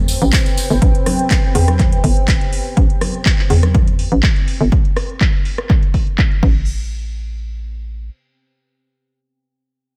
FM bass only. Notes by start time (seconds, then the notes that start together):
Already playing: E2
0.22 A1
0.70 G1
0.82 A1
1.55 E2
2.04 G1
2.77 A1
3.50 E2
4.12 A1
4.61 G1
6.43 A1